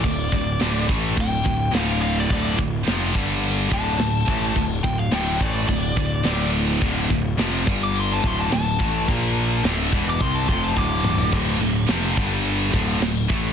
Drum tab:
CC |x---x---x---x---|x---x---x---x---|x---x---x---x---|x---x---x---x---|
SD |----o-------o---|----o-------o---|----o-------o---|----o-------o---|
T2 |----------------|----------------|----------------|----------------|
FT |----------------|----------------|----------------|----------------|
BD |o-o---o-o-o-----|o-o---o---o---o-|o-o---o-o-o-----|o-o---o---o---o-|

CC |x---x---x-------|x---x---x---x---|
SD |----o-----------|----o-------o---|
T2 |--------------o-|----------------|
FT |---------------o|----------------|
BD |o-----o-o-o-o---|o-----o---o---o-|